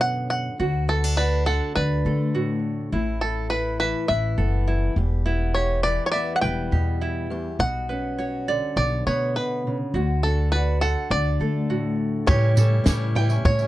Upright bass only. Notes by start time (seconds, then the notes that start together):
Already playing: B2
0.60 D2
1.76 D2
2.05 D3
2.93 A1
4.09 A1
4.38 F#1
4.96 E1
6.42 E1
6.72 E2
7.59 B1
8.76 B1
9.06 B2
9.94 D2
11.10 D2
11.40 D3
12.28 A2
12.87 A2
13.45 A2